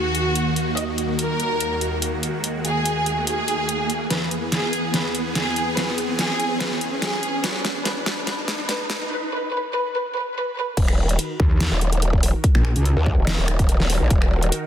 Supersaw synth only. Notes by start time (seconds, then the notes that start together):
Already playing: D#2 D#3 A#3 F#4
4.10 E2 E3 B3 G#4
10.77 D#3 D#4 F#4 A#4